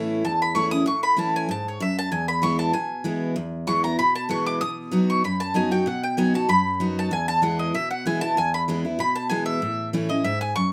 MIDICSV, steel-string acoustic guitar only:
0, 0, Header, 1, 2, 480
1, 0, Start_track
1, 0, Key_signature, 4, "major"
1, 0, Tempo, 312337
1, 1332, Time_signature, 4, 2, 24, 8
1, 16487, End_track
2, 0, Start_track
2, 0, Title_t, "Steel-string acoustic guitar"
2, 0, Program_c, 0, 25
2, 0, Note_on_c, 0, 45, 92
2, 0, Note_on_c, 0, 52, 84
2, 0, Note_on_c, 0, 57, 96
2, 0, Note_on_c, 0, 61, 95
2, 0, Note_on_c, 0, 64, 97
2, 327, Note_off_c, 0, 45, 0
2, 349, Note_off_c, 0, 52, 0
2, 351, Note_off_c, 0, 57, 0
2, 356, Note_off_c, 0, 61, 0
2, 362, Note_off_c, 0, 64, 0
2, 377, Note_on_c, 0, 40, 86
2, 847, Note_on_c, 0, 52, 91
2, 856, Note_on_c, 0, 57, 90
2, 862, Note_on_c, 0, 61, 99
2, 865, Note_on_c, 0, 64, 112
2, 1083, Note_off_c, 0, 64, 0
2, 1094, Note_off_c, 0, 52, 0
2, 1099, Note_off_c, 0, 57, 0
2, 1101, Note_off_c, 0, 61, 0
2, 1101, Note_on_c, 0, 64, 58
2, 1120, Note_on_c, 0, 61, 58
2, 1290, Note_off_c, 0, 40, 0
2, 1319, Note_on_c, 0, 45, 89
2, 1321, Note_off_c, 0, 64, 0
2, 1330, Note_off_c, 0, 61, 0
2, 1791, Note_on_c, 0, 52, 87
2, 1799, Note_on_c, 0, 57, 83
2, 1806, Note_on_c, 0, 61, 91
2, 1813, Note_on_c, 0, 64, 91
2, 2240, Note_off_c, 0, 45, 0
2, 2259, Note_off_c, 0, 52, 0
2, 2262, Note_off_c, 0, 57, 0
2, 2266, Note_off_c, 0, 61, 0
2, 2269, Note_off_c, 0, 64, 0
2, 2284, Note_on_c, 0, 44, 90
2, 2745, Note_off_c, 0, 44, 0
2, 2773, Note_on_c, 0, 42, 96
2, 3229, Note_off_c, 0, 42, 0
2, 3251, Note_on_c, 0, 40, 93
2, 3715, Note_on_c, 0, 52, 80
2, 3728, Note_on_c, 0, 56, 86
2, 3734, Note_on_c, 0, 59, 93
2, 3744, Note_on_c, 0, 64, 96
2, 4166, Note_off_c, 0, 40, 0
2, 4180, Note_off_c, 0, 52, 0
2, 4187, Note_off_c, 0, 56, 0
2, 4189, Note_off_c, 0, 59, 0
2, 4194, Note_off_c, 0, 64, 0
2, 4201, Note_on_c, 0, 47, 85
2, 4674, Note_on_c, 0, 52, 94
2, 4684, Note_on_c, 0, 56, 89
2, 4690, Note_on_c, 0, 59, 88
2, 4693, Note_on_c, 0, 64, 100
2, 5120, Note_off_c, 0, 47, 0
2, 5140, Note_off_c, 0, 52, 0
2, 5145, Note_off_c, 0, 56, 0
2, 5148, Note_off_c, 0, 59, 0
2, 5149, Note_off_c, 0, 64, 0
2, 5160, Note_on_c, 0, 40, 96
2, 5639, Note_on_c, 0, 52, 83
2, 5648, Note_on_c, 0, 56, 96
2, 5657, Note_on_c, 0, 59, 94
2, 5665, Note_on_c, 0, 64, 99
2, 5888, Note_off_c, 0, 64, 0
2, 5889, Note_off_c, 0, 52, 0
2, 5893, Note_off_c, 0, 56, 0
2, 5897, Note_off_c, 0, 59, 0
2, 5906, Note_on_c, 0, 64, 61
2, 5930, Note_on_c, 0, 59, 53
2, 6081, Note_off_c, 0, 40, 0
2, 6122, Note_off_c, 0, 64, 0
2, 6134, Note_off_c, 0, 59, 0
2, 6135, Note_on_c, 0, 47, 91
2, 6589, Note_on_c, 0, 52, 88
2, 6600, Note_on_c, 0, 56, 97
2, 6615, Note_on_c, 0, 59, 109
2, 6617, Note_on_c, 0, 64, 99
2, 7048, Note_off_c, 0, 47, 0
2, 7058, Note_off_c, 0, 52, 0
2, 7063, Note_off_c, 0, 56, 0
2, 7071, Note_off_c, 0, 59, 0
2, 7072, Note_off_c, 0, 64, 0
2, 7089, Note_on_c, 0, 47, 92
2, 7553, Note_on_c, 0, 54, 96
2, 7559, Note_on_c, 0, 59, 91
2, 7568, Note_on_c, 0, 63, 103
2, 7578, Note_on_c, 0, 66, 99
2, 8006, Note_off_c, 0, 47, 0
2, 8020, Note_off_c, 0, 54, 0
2, 8023, Note_off_c, 0, 59, 0
2, 8028, Note_off_c, 0, 63, 0
2, 8033, Note_off_c, 0, 66, 0
2, 8056, Note_on_c, 0, 42, 87
2, 8517, Note_on_c, 0, 54, 85
2, 8527, Note_on_c, 0, 59, 87
2, 8531, Note_on_c, 0, 63, 94
2, 8544, Note_on_c, 0, 66, 89
2, 8759, Note_off_c, 0, 66, 0
2, 8769, Note_off_c, 0, 54, 0
2, 8774, Note_off_c, 0, 59, 0
2, 8776, Note_off_c, 0, 63, 0
2, 8778, Note_on_c, 0, 66, 66
2, 8803, Note_on_c, 0, 63, 48
2, 8970, Note_off_c, 0, 42, 0
2, 9000, Note_off_c, 0, 66, 0
2, 9004, Note_on_c, 0, 47, 88
2, 9013, Note_off_c, 0, 63, 0
2, 9485, Note_on_c, 0, 54, 89
2, 9493, Note_on_c, 0, 59, 90
2, 9505, Note_on_c, 0, 63, 97
2, 9505, Note_on_c, 0, 66, 106
2, 9725, Note_off_c, 0, 66, 0
2, 9734, Note_off_c, 0, 54, 0
2, 9737, Note_off_c, 0, 59, 0
2, 9743, Note_off_c, 0, 63, 0
2, 9744, Note_on_c, 0, 66, 65
2, 9762, Note_on_c, 0, 63, 55
2, 9925, Note_off_c, 0, 47, 0
2, 9963, Note_off_c, 0, 66, 0
2, 9968, Note_on_c, 0, 42, 85
2, 9972, Note_off_c, 0, 63, 0
2, 10450, Note_on_c, 0, 54, 86
2, 10450, Note_on_c, 0, 59, 83
2, 10463, Note_on_c, 0, 63, 95
2, 10466, Note_on_c, 0, 66, 103
2, 10887, Note_off_c, 0, 42, 0
2, 10910, Note_off_c, 0, 54, 0
2, 10910, Note_off_c, 0, 59, 0
2, 10917, Note_off_c, 0, 63, 0
2, 10918, Note_off_c, 0, 66, 0
2, 10928, Note_on_c, 0, 40, 94
2, 11400, Note_on_c, 0, 52, 83
2, 11411, Note_on_c, 0, 56, 91
2, 11424, Note_on_c, 0, 59, 96
2, 11427, Note_on_c, 0, 64, 88
2, 11847, Note_off_c, 0, 40, 0
2, 11865, Note_off_c, 0, 52, 0
2, 11871, Note_off_c, 0, 56, 0
2, 11877, Note_off_c, 0, 59, 0
2, 11879, Note_off_c, 0, 64, 0
2, 11902, Note_on_c, 0, 47, 95
2, 12380, Note_on_c, 0, 52, 83
2, 12395, Note_on_c, 0, 56, 100
2, 12397, Note_on_c, 0, 59, 102
2, 12402, Note_on_c, 0, 64, 105
2, 12610, Note_off_c, 0, 64, 0
2, 12622, Note_off_c, 0, 52, 0
2, 12628, Note_on_c, 0, 64, 62
2, 12629, Note_off_c, 0, 56, 0
2, 12630, Note_off_c, 0, 59, 0
2, 12657, Note_on_c, 0, 59, 55
2, 12814, Note_off_c, 0, 47, 0
2, 12846, Note_off_c, 0, 64, 0
2, 12860, Note_off_c, 0, 59, 0
2, 12866, Note_on_c, 0, 40, 92
2, 13340, Note_on_c, 0, 52, 87
2, 13348, Note_on_c, 0, 56, 91
2, 13360, Note_on_c, 0, 59, 108
2, 13365, Note_on_c, 0, 64, 97
2, 13576, Note_off_c, 0, 64, 0
2, 13582, Note_off_c, 0, 52, 0
2, 13586, Note_off_c, 0, 56, 0
2, 13592, Note_off_c, 0, 59, 0
2, 13595, Note_on_c, 0, 64, 64
2, 13616, Note_on_c, 0, 59, 55
2, 13776, Note_off_c, 0, 40, 0
2, 13810, Note_off_c, 0, 64, 0
2, 13812, Note_on_c, 0, 47, 91
2, 13820, Note_off_c, 0, 59, 0
2, 14295, Note_on_c, 0, 52, 98
2, 14302, Note_on_c, 0, 56, 99
2, 14309, Note_on_c, 0, 59, 104
2, 14318, Note_on_c, 0, 64, 96
2, 14729, Note_off_c, 0, 47, 0
2, 14753, Note_off_c, 0, 52, 0
2, 14757, Note_off_c, 0, 56, 0
2, 14760, Note_off_c, 0, 59, 0
2, 14765, Note_off_c, 0, 64, 0
2, 14784, Note_on_c, 0, 45, 88
2, 15264, Note_on_c, 0, 52, 82
2, 15268, Note_on_c, 0, 57, 92
2, 15276, Note_on_c, 0, 61, 100
2, 15283, Note_on_c, 0, 64, 97
2, 15485, Note_off_c, 0, 64, 0
2, 15503, Note_on_c, 0, 64, 63
2, 15504, Note_off_c, 0, 52, 0
2, 15506, Note_off_c, 0, 57, 0
2, 15510, Note_off_c, 0, 61, 0
2, 15527, Note_on_c, 0, 61, 54
2, 15696, Note_off_c, 0, 45, 0
2, 15724, Note_off_c, 0, 64, 0
2, 15736, Note_off_c, 0, 61, 0
2, 15746, Note_on_c, 0, 44, 91
2, 16199, Note_off_c, 0, 44, 0
2, 16224, Note_on_c, 0, 42, 90
2, 16487, Note_off_c, 0, 42, 0
2, 16487, End_track
0, 0, End_of_file